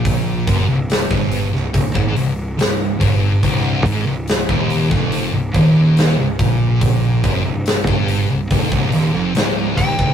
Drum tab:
HH |o-o-o-o-o-o-o-o-|o-o-o-o-o-o-o-o-|o-o-o-o-o-o-o-o-|
SD |----o--o----o---|----o--o----o---|----o-------o---|
BD |o-o--o--oo----o-|o----o-o--o---o-|o-o--o--oo----oo|